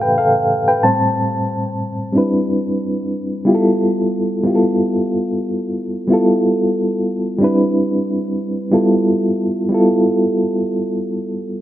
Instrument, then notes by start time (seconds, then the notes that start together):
reed electric piano
Already playing: A2 E3 A3 G4 A4 E5 F5
0.02 B4 G5
0.18 A4 F5
0.68 B4 G5
0.83 A2 G3 C4 C5 A5
2.12 G3 C4 D4
2.16 E4 B4
3.45 G3 B3 E4 F4 G4
3.55 A4
4.43 G3 B3 E4 F4
4.49 G4
4.55 A4
6.08 G3 B3 E4
6.12 F4 A4
7.38 G3 C4 D4
7.43 E4 B4
8.71 G3 B3 E4 F4 A4
9.69 G3 B3 E4
9.73 F4 A4